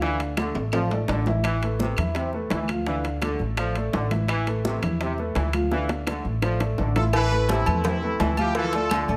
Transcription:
Already playing: D2
0.01 D3 E3 D4 F5, high bongo, high conga
0.20 high bongo, high conga, high timbale
0.37 D3 A3 A4 D5, high bongo, high conga, high timbale, low timbale, claves
0.55 A1, high bongo, high conga, high timbale
0.72 F3 A3 A4 D5, high bongo, high conga, high timbale, claves
0.91 A3 A4 D5, high bongo, high conga, low timbale
1.08 A1 D3, high bongo, low bongo, high conga, low timbale
1.26 E3 E4 E5, high conga, low timbale
1.44 E3, high bongo, high conga, high timbale, claves
1.62 A3 A4 B4, high bongo, high conga, high timbale
1.79 C3 A3 A4 B4, high bongo, high conga, low timbale
1.97 E2 E3 E4 E5, high bongo, high conga, low conga, high timbale, claves
2.15 C3, high bongo, high conga, high timbale
2.33 A3 A4 B4, high bongo, high conga
2.50 D2 E3, high bongo, low bongo, high conga, high timbale, low timbale
2.68 F3 F4 F5, high conga, high timbale, claves
2.87 D3 E3 D4 F5, high bongo, high conga
3.04 high bongo, high conga, high timbale
3.22 D3 A3 A4 D5, high bongo, high conga, high timbale, low timbale, claves
3.39 A1, high bongo, high conga
3.57 F3 A3 A4 D5, high bongo, high conga, high timbale, claves
3.75 A3 A4 D5, high bongo, high conga, high timbale
3.93 A1 D3, high bongo, low bongo, high conga, low timbale
4.11 E3 E4 E5, high conga, high timbale
4.28 E3, high bongo, high conga, high timbale, claves
4.47 A3 A4 B4, high bongo, high conga, high timbale
4.65 C3 A3 A4 B4, high bongo, high conga, low timbale
4.82 E2 E3 E4 E5, high bongo, high conga, low conga, high timbale, claves
5.01 C3, high bongo, high timbale
5.18 A3 A4 B4, high bongo, high conga
5.35 D2 E3, high bongo, low bongo, high conga, high timbale, low timbale
5.53 F3 F4 F5, high conga, high timbale, claves
5.71 D3 E3 D4 F5, high bongo, high conga
5.89 high bongo, high conga, high timbale
6.07 D3 A3 A4 D5, low bongo, high conga, high timbale, low timbale, claves
6.25 A1, high conga
6.42 F3 A3 A4 D5, low bongo, high conga, high timbale, claves
6.60 A3 A4 D5, low bongo, high conga, high timbale
6.78 A1 D3, low bongo, high conga, low timbale
6.96 E3 E4 F4 A4 E5, low bongo, high conga, high timbale
7.13 E3 E4 B4, cowbell, low agogo, claves
7.31 A3 A4 B4, high conga
7.49 C3 C4 E4, cowbell, high conga, low timbale, low agogo
7.66 E2 A3 A4 B4, high conga, low conga, low agogo, claves
7.84 C3 C4 E4, cowbell, high conga, low conga, low agogo
8.03 A3 A4 B4, high conga
8.20 D2 E3, cowbell, high conga, low timbale, low agogo
8.37 F3 E4 F4 G4 F5, high conga, low agogo, claves
8.55 E3 F3 F4 A4 F5, cowbell
8.73 A3 F4 A4 D5, cowbell, high conga, low agogo
8.90 D3, cowbell, high conga, low timbale, low agogo, claves
9.08 A1 A3 A4 D5, high conga, low agogo

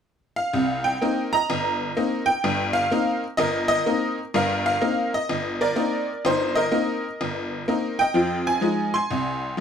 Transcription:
0.36 F5
0.53 C2 C3
0.84 G5
1.02 A#3 C4 D#4
1.33 D#5 A#5
1.50 G1
1.97 A#3 C4 D#4
2.26 G5
2.44 G1 G2
2.73 F5
2.91 A#3 C4 D#4
3.37 G1 A#4 D#5
3.68 D#5
3.86 A#3 C4 D#4
4.34 G1 G2 A#4 F5
4.66 F5
4.81 A#3 C4 D#4
5.14 D#5
5.29 G1
5.61 A#4 D5
5.76 A#3 C4 D#4
6.25 G1 D#4 C5
6.55 A#4 D#5
6.72 A#3 C4 D#4
7.21 G1
7.68 A#3 C4 D#4
7.99 D#5 G5
8.14 F2 F3
8.47 G#5
8.61 F3 G#3 D#4
8.94 G#5 C6
9.10 C2 C3
9.57 F3

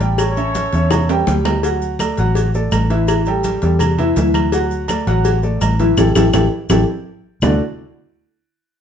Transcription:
Already playing: A1
0.01 G3 G4 G5, cowbell, maracas
0.18 A4 C#5, cowbell, high conga, low agogo, claves, maracas
0.37 C#4 C#5 E5, high conga, low agogo, maracas
0.55 cowbell, high conga, low timbale, low agogo, maracas
0.72 E2 C#4 C#5 E5, cowbell, maracas
0.91 cowbell, high bongo, high conga, low conga, low agogo, claves, maracas
1.09 G3 G4 G5, high conga, high timbale, low agogo, maracas
1.27 D2 G3 G4 G5, cowbell, low bongo, high conga, maracas
1.45 cowbell, low bongo, low timbale, low agogo, claves, maracas
1.63 F#3 F#4 F#5, cowbell, high conga, low agogo, maracas
1.82 high conga, maracas
1.99 A3 A4 D5, cowbell, high conga, low timbale, low agogo, claves, maracas
2.17 A1 F#3 F#4 F#5, cowbell, high conga, maracas
2.35 cowbell, high conga, low agogo, maracas
2.54 A3 A4 D5, high conga, maracas
2.72 A1, cowbell, high conga, low timbale, low agogo, claves, maracas
2.90 E3 E4 E5, cowbell, maracas
3.08 cowbell, high conga, low agogo, claves, maracas
3.25 G3 G4 A4, high conga, low agogo, maracas
3.44 cowbell, high conga, low timbale, low agogo, maracas
3.62 E2 G3 G4 A4, cowbell, maracas
3.79 cowbell, high conga, low conga, low agogo, claves, maracas
3.98 E3 E4 E5, high conga, low conga, low agogo, maracas
4.16 D2 E3 E4 E5, cowbell, high conga, low timbale, maracas
4.34 cowbell, high conga, low agogo, claves, maracas
4.52 F#3 F#4 F#5, cowbell, low agogo, maracas
4.71 high conga, maracas
4.88 A3 A4 D5, cowbell, high conga, low timbale, low agogo, claves, maracas
5.07 A1 F#3 F#4 F#5, cowbell, maracas
5.25 cowbell, high conga, low agogo, maracas
5.43 A3 A4 D5, high conga, maracas
5.61 A1, cowbell, low timbale, low agogo, claves, maracas
5.79 E3 E4 E5, cowbell, high conga, maracas
5.97 A1 E4 G4 A4, cowbell, high conga, high timbale, claves, maracas
6.15 A1 E4 G4 A4, cowbell, high conga, high timbale, claves, maracas
6.33 A1 E4 G4 A4, cowbell, high conga, high timbale, claves, maracas
6.69 A1 E4 G4 A4, cowbell, high conga, high timbale, claves, maracas
7.42 D2 D3 A3 D4 F#4 A4 D5, low bongo, low conga, low timbale, claves, maracas

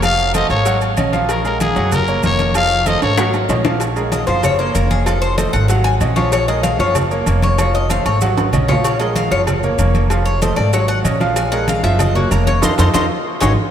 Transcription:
Already playing: F1
0.02 F3 F4 F5, cowbell, high conga, low agogo, maracas
0.19 high conga, maracas
0.34 A3 A4 C5 D#5, cowbell, high conga, low agogo, maracas
0.50 G#1 C#5, low agogo, maracas
0.65 F#3 F#4 F#5, cowbell, high conga, maracas
0.81 high conga, low agogo, maracas
0.97 A#1 C#4 C#5 D#5, cowbell, high conga, low agogo, maracas
1.13 F3 F4 F5, cowbell, high conga, maracas
1.29 A#4, cowbell, high conga, low agogo, maracas
1.44 G#3 G#4 A#4, high conga, low agogo, maracas
1.60 G#4, cowbell, high conga, low agogo, maracas
1.76 F#1 F#3 F#4 F#5, high conga, maracas
1.92 A#4, cowbell, high conga, low conga, low agogo, maracas
2.07 A#3 A#4 C#5, high conga, maracas
2.23 F1 A#3 A#4 C#5, cowbell, high conga, low timbale, low agogo, maracas
2.39 cowbell, high conga, low agogo, maracas
2.55 F3 F4 F5, cowbell, high conga, low agogo, maracas
2.70 high conga, maracas
2.86 A3 A4 C5 D#5, cowbell, high conga, low agogo, maracas
3.02 G#1 C#5, high timbale, low agogo, maracas
3.17 F#3 F#4 F#5, cowbell, high bongo, high conga, low timbale, maracas
3.33 high bongo, high conga, low timbale, low agogo, maracas
3.49 A#1 C#4 C#5 D#5, cowbell, low bongo, high conga, low timbale, low agogo, maracas
3.65 F3 F4 F5, cowbell, low bongo, high conga, low timbale, maracas
3.80 cowbell, high conga, low agogo, maracas
3.96 G#3 G#4 A#4, high conga, low agogo, maracas
4.12 D#5, cowbell, high conga, low agogo, maracas
4.27 F#1 F3 F4 C5 F5, high conga, maracas
4.43 C#5, cowbell, high conga, low conga, low agogo, maracas
4.59 A#3 A#4 C5 C#5, high conga, maracas
4.75 F1 A#3 A#4 C#5, cowbell, high conga, low agogo, maracas
4.90 G#4, cowbell, high conga, low agogo, maracas
5.06 F3 F4 A4 F5, cowbell, high conga, low agogo, maracas
5.22 C5, high conga, maracas
5.38 A3 A4 C5 D#5, cowbell, high conga, low agogo, maracas
5.53 G#1 F#5, low agogo, maracas
5.68 F#3 F#4 F5 F#5, cowbell, high conga, maracas
5.84 G#5, high conga, low agogo, maracas
6.01 A#1 C#4 C#5 D#5, cowbell, high conga, low agogo, maracas
6.16 F3 F4 C#5 F5, cowbell, high conga, maracas
6.32 C#5, cowbell, high conga, low agogo, maracas
6.48 G#3 G#4 A#4 D#5, high conga, low agogo, maracas
6.63 F5, cowbell, high conga, low agogo, maracas
6.79 F#1 F3 F4 C#5 F5, high conga, maracas
6.95 cowbell, high conga, low conga, low agogo, maracas
7.11 A#3 A#4 C#5, high conga, maracas
7.26 F1 A#3 A#4 C#5, cowbell, high conga, low agogo, maracas
7.42 C#5, cowbell, high conga, low agogo, maracas
7.58 F3 F4 C#5 F5, cowbell, high conga, low agogo, maracas
7.74 D#5, high conga, maracas
7.90 A3 A4 C5 F5, cowbell, high conga, low agogo, maracas
8.06 G#1 C#5, low agogo, maracas
8.21 F#3 F#4 F#5, cowbell, high conga, maracas
8.37 high conga, high timbale, low agogo, maracas
8.52 A#1 C#4 C#5 D#5, cowbell, low conga, low agogo, maracas
8.68 F3 F4 C#5 F5, cowbell, low conga, low timbale, maracas
8.84 C#5, cowbell, high conga, low agogo, maracas
8.99 G#3 G#4 A#4 D#5, high conga, low agogo, maracas
9.16 F5, cowbell, high conga, low agogo, maracas
9.31 F#1 F3 F4 C#5 F5, high conga, maracas
9.47 cowbell, high conga, low conga, low agogo, maracas
9.63 A#3 A#4 C#5, high conga, low conga, maracas
9.78 F1 A#3 A#4 C#5, cowbell, high conga, low agogo, maracas
9.94 cowbell, high conga, low agogo, maracas
10.10 F3 F4 F5, cowbell, high conga, low agogo, maracas
10.25 C#5, high conga, maracas
10.42 A3 A4 C5 D#5, cowbell, high conga, low agogo, maracas
10.56 G#1 D5, low agogo, maracas
10.73 F#3 F#4 C#5 F#5, cowbell, high conga, maracas
10.88 F#5, high conga, low agogo, maracas
11.04 A#1 C#4 C#5 D#5, cowbell, high conga, low agogo, maracas
11.20 F3 F4 F5, cowbell, high conga, maracas
11.36 G#5, cowbell, high conga, low agogo, maracas
11.52 G#3 G#4 A#4 F#5, high conga, low agogo, maracas
11.68 F5, cowbell, high conga, low agogo, maracas
11.83 F#1 F3 F4 E5 F5, maracas
11.99 D#5, cowbell, high conga, low conga, low agogo, maracas
12.15 A#3 F#4 A#4 C#5, high conga, low conga, maracas
12.31 F1 A#3 A#4 C#5, cowbell, high conga, low agogo, maracas
12.47 C#5, cowbell, high conga, low agogo, maracas
12.62 F2 D#4 F4 A4 C5 D#5 F5, cowbell, high conga, high timbale, maracas
12.78 F2 D#4 F4 A4 C5 D#5 F5, cowbell, high conga, high timbale, maracas
12.93 F2 D#4 F4 A4 C5 D#5 F5, cowbell, high conga, high timbale, maracas
13.40 G#1 D#4 F#4 G#4 C#5 D#5, cowbell, high conga, high timbale, maracas

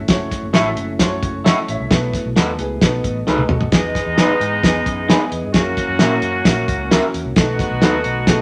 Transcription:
Already playing: F#3 A3 C#4 E4
0.08 F#1 C#4 E4 F#4 A4 C#5, kick, snare, closed hi-hat
0.31 kick, snare, closed hi-hat
0.43 F#1
0.53 A1 C#4 E4 F#4 A4 C#5 E5, snare, closed hi-hat
0.77 F#1, closed hi-hat
0.99 F#2 C#4 E4 F#4 A4 C5, kick, snare, closed hi-hat
1.07 C#5
1.23 F#1, kick, closed hi-hat
1.44 E4 A4 C#5 D#5 F#5, snare, closed hi-hat
1.68 A1 C#5 E5, closed hi-hat
1.80 C2
1.90 B1 F#3 B3 E4 F#4 A4 B4, kick, snare, closed hi-hat
2.14 kick, snare, closed hi-hat
2.25 B1
2.36 D#2 E4 A4 B4 D#5 F#5, snare, closed hi-hat
2.59 C#2 G#4 B4, closed hi-hat
2.81 B1 F#3 B3 D#4 F#4 A4 B4 D#5, kick, snare, closed hi-hat
3.04 A1, kick, closed hi-hat
3.27 C#2 D#4 G#4 A4 B4, snare
3.38 high tom
3.49 B1 F#4 A4, mid tom
3.61 floor tom
3.72 E2 E3 G#3 B3 D#4 G#4 B4, kick, snare, closed hi-hat
3.95 kick, snare, closed hi-hat
4.06 E2
4.16 E3 B3 D#4 G#4 B4, snare, closed hi-hat
4.29 muted fingered electric bass stroke
4.40 G#2, closed hi-hat
4.63 E2 E3 B3 D#4 G#4 B4, kick, snare, closed hi-hat
4.86 F#2, kick, closed hi-hat
5.08 B3 D#4 E4 G#4 A#4 B4, snare, closed hi-hat
5.15 B4
5.32 E2, closed hi-hat
5.44 G2
5.53 F#2 E3 A#3 C#4 E4 F#4 G#4, kick, snare, closed hi-hat
5.60 A#4
5.77 kick, snare, closed hi-hat
5.89 F#2
5.99 A#2 A#3 C#4 E4 F#4 A#4, snare, closed hi-hat
6.22 F#2, closed hi-hat
6.45 A#2 A#3 C#4 E4 F#4 A#4, kick, snare, closed hi-hat
6.68 C#2, kick, closed hi-hat
6.91 A#3 C#4 E4 F#4 A#4, snare, closed hi-hat
7.14 E2, closed hi-hat
7.25 C2
7.36 B1 D#3 A3 B3 D#4 F#4 A4, kick, snare, closed hi-hat
7.59 kick, snare, closed hi-hat
7.71 B1
7.82 D#2 A3 B3 D#4 F#4 A4 B4, snare, closed hi-hat
8.04 B1, closed hi-hat
8.27 B2 A3 B3 D#4 F#4 A4, kick, snare, closed hi-hat

